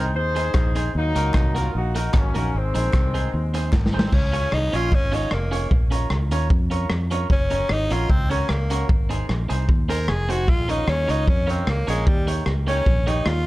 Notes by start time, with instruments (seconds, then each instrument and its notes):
Already playing: fingered electric bass C2, clean electric guitar C4 D#4 G#4 C5, horn section C4 D#4
0.15 fingered electric bass D#2, horn section D#4 G#4 C5, muted clean electric guitar stroke
0.35 clean electric guitar C4 D#4 G#4 C5, closed hi-hat
0.54 fingered electric bass A#1, kick, cross-stick, clap
0.75 clean electric guitar C4 D#4 G#4 C5, closed hi-hat
0.95 fingered electric bass D#2, horn section F#3 A#3 D#4
1.15 fingered electric bass C#2, clean electric guitar A#3 D#4 F#4 A#4, closed hi-hat
1.34 fingered electric bass C2, kick, cross-stick, clap
1.55 clean electric guitar A#3 D#4 F#4 A#4, horn section F4, closed hi-hat
1.75 fingered electric bass A#1, horn section A#3 D#4 F#4
1.95 clean electric guitar A#3 D#4 F#4 A#4, horn section D#4, closed hi-hat
2.14 fingered electric bass G#1, horn section F#3 A#3 C#4, muted clean electric guitar stroke, kick, cross-stick, clap
2.34 fingered electric bass A#1, clean electric guitar A#3 D#4 F#4 A#4, closed hi-hat
2.54 fingered electric bass G#1, horn section D#3 G#3 C4
2.74 fingered electric bass A#1, clean electric guitar C4 D#4 G#4 C5, closed hi-hat
2.93 fingered electric bass C2, kick, cross-stick, clap
3.14 clean electric guitar C4 D#4 G#4 C5, closed hi-hat
3.33 fingered electric bass D#2, muted clean electric guitar stroke
3.54 clean electric guitar C4 D#4 G#4 C5, closed hi-hat
3.73 fingered electric bass G#1, kick, snare, clap
3.86 snare
3.93 clean electric guitar C4 D#4 G#4 C5
3.99 snare
4.07 tenor saxophone C4
4.12 fingered electric bass C#2, tenor saxophone C#4, kick, crash
4.32 clean electric guitar C#4 F4 G#4 C#5, closed hi-hat
4.52 fingered electric bass C2, tenor saxophone D#4, cross-stick
4.73 fingered electric bass A#1, clean electric guitar C#4 F4 G#4 C#5, tenor saxophone F4, closed hi-hat
4.92 tenor saxophone C#4, kick
5.12 clean electric guitar C#4 F4 G#4 C#5, tenor saxophone D#4, closed hi-hat
5.31 fingered electric bass F1, tenor saxophone A#3, cross-stick
5.51 clean electric guitar C#4 F4 G#4 C#5, closed hi-hat
5.71 fingered electric bass A#1, kick
5.91 clean electric guitar C#4 F4 A#4 C#5, closed hi-hat
6.10 fingered electric bass C#2, cross-stick
6.31 fingered electric bass D#2, clean electric guitar C#4 F4 A#4 C#5, closed hi-hat
6.50 fingered electric bass F2, muted clean electric guitar stroke, kick
6.70 clean electric guitar C#4 F4 A#4 C#5, closed hi-hat
6.90 fingered electric bass F2, cross-stick
7.11 clean electric guitar C#4 F4 A#4 C#5, closed hi-hat
7.30 fingered electric bass F#1, tenor saxophone C#4, kick
7.50 clean electric guitar C#4 F#4 A#4 C#5, closed hi-hat
7.69 fingered electric bass G#1, tenor saxophone D#4, cross-stick
7.90 fingered electric bass A#1, clean electric guitar C#4 F#4 A#4 C#5, tenor saxophone F4, closed hi-hat
8.10 fingered electric bass C#2, tenor saxophone C4, kick
8.30 clean electric guitar C#4 F#4 A#4 C#5, tenor saxophone C#4, closed hi-hat
8.49 fingered electric bass C#2, tenor saxophone A#3, cross-stick
8.70 clean electric guitar C#4 F#4 A#4 C#5, closed hi-hat
8.89 fingered electric bass G#1, kick
9.09 clean electric guitar C4 D#4 G#4 C5, closed hi-hat
9.29 fingered electric bass A#1, cross-stick
9.49 fingered electric bass C2, clean electric guitar C4 D#4 G#4 C5, closed hi-hat
9.68 fingered electric bass D#2, muted clean electric guitar stroke, kick
9.89 clean electric guitar C4 D#4 G#4 C5, tenor saxophone A#4, closed hi-hat
10.08 fingered electric bass F1, tenor saxophone G#4, cross-stick
10.29 clean electric guitar C4 D#4 G#4 C5, tenor saxophone F#4, closed hi-hat
10.48 fingered electric bass A#1, tenor saxophone F4, kick
10.68 clean electric guitar C#4 F4 A#4 C#5, tenor saxophone D#4, closed hi-hat
10.88 fingered electric bass D#2, tenor saxophone C#4, cross-stick
11.07 fingered electric bass C#2, clean electric guitar C#4 F4 A#4 C#5, tenor saxophone D#4, closed hi-hat
11.28 fingered electric bass F2, tenor saxophone C#4, kick
11.47 tenor saxophone C4, clean electric guitar C#4 F4 A#4 C#5, closed hi-hat
11.67 fingered electric bass C#2, tenor saxophone A#3, cross-stick
11.87 fingered electric bass A#1, tenor saxophone G#3, clean electric guitar C#4 F4 A#4 C#5, closed hi-hat
12.07 fingered electric bass D#2, tenor saxophone G3, kick
12.27 clean electric guitar A#3 D#4 G4 C#5, closed hi-hat
12.46 fingered electric bass C#2, cross-stick
12.67 clean electric guitar A#3 D#4 G4 C#5, tenor saxophone C#4, closed hi-hat
12.86 fingered electric bass A#1, kick
13.07 clean electric guitar A#3 D#4 G4 C#5, tenor saxophone D#4, closed hi-hat
13.26 fingered electric bass D#2, tenor saxophone F4, cross-stick